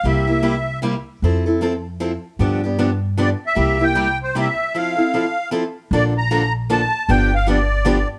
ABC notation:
X:1
M:3/4
L:1/16
Q:"Swing" 1/4=153
K:F
V:1 name="Accordion"
e8 z4 | z12 | z8 d2 e2- | e2 g4 c2 e4 |
f8 z4 | [K:Bb] d2 b4 z2 a4 | g2 f2 d6 z2 |]
V:2 name="Steel-string acoustic guitar"
[C,G,B,EG]2 [B,EG]2 [C,G,B,EG] z3 [C,G,B,EG] z3 | [F,CEA]2 [CEA]2 [F,CEA] z3 [F,CEA] z3 | [D,F,=B,DG]2 [B,DG]2 [D,F,B,DG] z3 [D,F,B,DG] z3 | [C,G,B,EG]2 [B,EG]2 [C,G,B,EG] z3 [C,G,B,EG] z3 |
[F,CEA]2 [CEA]2 [F,CEA] z3 [F,CEA] z3 | [K:Bb] [D,F,B,DA]2 z2 [D,F,B,DA] z3 [D,F,B,DA] z3 | [D,F,=B,DG]2 z2 [D,F,B,DG] z3 [D,F,B,DG] z3 |]
V:3 name="Upright bass" clef=bass
C,,12 | F,,12 | G,,12 | C,,12 |
z12 | [K:Bb] B,,,12 | G,,,12 |]